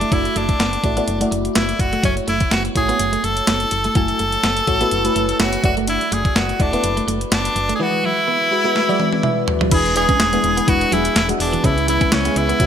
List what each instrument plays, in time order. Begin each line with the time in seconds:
Already playing: fm electric piano A3 E4 F#4 D5 E5, tenor saxophone D4
0.01 clean electric guitar A3, closed hi-hat
0.11 fm bass F#1, fm electric piano A3 E4 F#4 D5, clean electric guitar D4, tenor saxophone E4, kick, closed hi-hat
0.25 muted clean electric guitar stroke, closed hi-hat
0.36 fm bass F#1, clean electric guitar A3, tenor saxophone D4, closed hi-hat
0.49 kick, closed hi-hat
0.59 fm bass F#1, clean electric guitar B3, snare, closed hi-hat
0.73 muted clean electric guitar stroke, closed hi-hat
0.84 fm bass A1, fm electric piano A3 E4 F#4 D5, kick, closed hi-hat
0.97 fm electric piano A3 E4 F#4 D5, clean electric guitar B3, closed hi-hat
1.07 fm bass F#1, muted clean electric guitar stroke, closed hi-hat
1.21 fm electric piano A3 E4 F#4 D5, clean electric guitar A3, closed hi-hat
1.31 fm bass F#1, clean electric guitar A3, closed hi-hat
1.45 closed hi-hat
1.55 fm bass F#1, clean electric guitar B3, tenor saxophone E4, snare, closed hi-hat
1.69 closed hi-hat
1.79 fm bass F#1, tenor saxophone F#4, muted clean electric guitar stroke, kick, closed hi-hat
1.93 clean electric guitar A3, closed hi-hat
2.03 fm bass F#1, clean electric guitar F#3, fm electric piano A3 E4 F#4 C#5, tenor saxophone C#4, kick, closed hi-hat
2.17 muted clean electric guitar stroke, closed hi-hat
2.28 fm bass F#1, clean electric guitar A3, tenor saxophone E4, closed hi-hat
2.40 kick, closed hi-hat
2.51 fm bass F#1, clean electric guitar B3, tenor saxophone F#4, snare, closed hi-hat
2.65 muted clean electric guitar stroke, closed hi-hat
2.75 fm bass A1, fm electric piano A3 E4 F#4 C#5, tenor saxophone G#4, kick, closed hi-hat
2.88 fm electric piano A3 E4 F#4 C#5, clean electric guitar B3, closed hi-hat
2.99 fm bass F#1, muted clean electric guitar stroke, closed hi-hat
3.13 clean electric guitar A3, closed hi-hat
3.24 fm bass F#1, clean electric guitar A3, tenor saxophone A4, closed hi-hat
3.37 closed hi-hat
3.47 fm bass F#1, clean electric guitar B3, snare, closed hi-hat
3.60 closed hi-hat
3.71 fm bass F#1, muted clean electric guitar stroke, closed hi-hat
3.84 clean electric guitar A3, closed hi-hat
3.95 fm bass F#1, clean electric guitar F#3, fm electric piano A3 E4 F#4 G#5, tenor saxophone A4, kick, closed hi-hat
4.08 muted clean electric guitar stroke, closed hi-hat
4.19 fm bass F#1, clean electric guitar A3, closed hi-hat
4.32 closed hi-hat
4.44 fm bass F#1, clean electric guitar B3, snare, closed hi-hat
4.57 muted clean electric guitar stroke, closed hi-hat
4.67 fm bass A1, fm electric piano A3 E4 F#4 C#5, kick, closed hi-hat
4.81 fm electric piano A3 E4 F#4 B4, clean electric guitar B3, closed hi-hat
4.91 fm bass F#1, muted clean electric guitar stroke, closed hi-hat
5.04 fm electric piano A3 E4 F#4 B4, clean electric guitar A3, closed hi-hat
5.16 fm bass F#1, clean electric guitar A3, closed hi-hat
5.29 closed hi-hat
5.40 fm bass F#1, clean electric guitar B3, tenor saxophone F#4, snare, closed hi-hat
5.53 closed hi-hat
5.63 fm bass F#1, fm electric piano A3 E4 F#4 D5, tenor saxophone F#4, muted clean electric guitar stroke, kick, closed hi-hat
5.77 clean electric guitar A3, closed hi-hat
5.87 clean electric guitar D4, tenor saxophone E4, closed hi-hat
6.01 muted clean electric guitar stroke, closed hi-hat
6.12 fm bass F#1, clean electric guitar A3, tenor saxophone G#4, closed hi-hat
6.25 kick, closed hi-hat
6.36 fm bass F#1, clean electric guitar B3, tenor saxophone F#4, snare, closed hi-hat
6.49 muted clean electric guitar stroke, closed hi-hat
6.59 fm bass E1, fm electric piano A3 E4 F#4 D5, tenor saxophone D4, kick, closed hi-hat
6.72 fm electric piano A3 E4 F#4 B4, clean electric guitar B3, closed hi-hat
6.84 fm bass F#1, muted clean electric guitar stroke, closed hi-hat
6.97 clean electric guitar A3, closed hi-hat
7.08 fm bass F#1, clean electric guitar A3, closed hi-hat
7.21 closed hi-hat
7.32 fm bass F#1, clean electric guitar B3, tenor saxophone D4, snare, closed hi-hat
7.45 closed hi-hat
7.56 fm bass F#1, muted clean electric guitar stroke, closed hi-hat
7.69 clean electric guitar A3, closed hi-hat
7.75 fm electric piano G#3, tenor saxophone G#4
7.79 clean electric guitar E3, fm electric piano E3 E4 F#4 B4, tenor saxophone F#4
7.93 muted clean electric guitar stroke
8.04 clean electric guitar F#3, tenor saxophone E4
8.28 clean electric guitar B3
8.41 muted clean electric guitar stroke
8.51 fm electric piano G#3 E4 F#4 B4
8.64 fm electric piano G#3 E4 F#4 B4, clean electric guitar B3
8.76 muted clean electric guitar stroke, snare
8.88 clean electric guitar F#3, fm electric piano G#3 E4 F#4 D5
9.00 clean electric guitar G#3, high tom
9.13 high tom
9.23 clean electric guitar E3, fm electric piano E5, mid tom
9.48 muted clean electric guitar stroke, floor tom
9.61 clean electric guitar F#3, floor tom
9.71 fm bass E1, fm electric piano E3 G#3 D4 E4 B4, string machine E3 B3 D4 G#4, clean electric guitar E4, tenor saxophone G#4, kick, closed hi-hat, crash
9.85 closed hi-hat
9.95 fm electric piano G#3 D4 E4 B4, tenor saxophone G#4, muted clean electric guitar stroke, closed hi-hat
10.09 clean electric guitar C#4, kick, closed hi-hat
10.20 fm bass E1, snare, closed hi-hat
10.32 fm electric piano G#3 D4 E4 B4, clean electric guitar B3, closed hi-hat
10.44 fm bass E1, muted clean electric guitar stroke, closed hi-hat
10.57 clean electric guitar B3, closed hi-hat
10.67 fm bass E1, fm electric piano G#3 D4 E4 B4, tenor saxophone F#4, kick, closed hi-hat
10.81 closed hi-hat
10.91 fm bass E1, clean electric guitar F#3, fm electric piano G#3 D4 E4 G#4, tenor saxophone E4, closed hi-hat
11.05 closed hi-hat
11.16 fm bass E1, tenor saxophone E4, snare, closed hi-hat
11.29 clean electric guitar G#3, fm electric piano G#3 D4 E4 F#4, closed hi-hat
11.40 fm bass E1, tenor saxophone D4, muted clean electric guitar stroke, open hi-hat
11.53 clean electric guitar E3, closed hi-hat
11.64 fm bass C#2, string machine C#3 G#3 E4, fm electric piano C#3 G#3 C#4 E4 B4, clean electric guitar C#4, tenor saxophone E4, kick, closed hi-hat
11.78 closed hi-hat
11.87 fm electric piano G#3 C#4 E4 B4, tenor saxophone E4, muted clean electric guitar stroke, closed hi-hat
12.01 clean electric guitar C#4, kick, closed hi-hat
12.12 fm bass C#2, tenor saxophone C#4, snare, closed hi-hat
12.25 fm electric piano G#3 C#4 E4 G#4, clean electric guitar B3, closed hi-hat
12.36 fm bass C#2, tenor saxophone E4, muted clean electric guitar stroke, closed hi-hat
12.49 clean electric guitar B3, closed hi-hat
12.59 fm bass C#2, fm electric piano G#3 C#4 E4 F#4, kick, closed hi-hat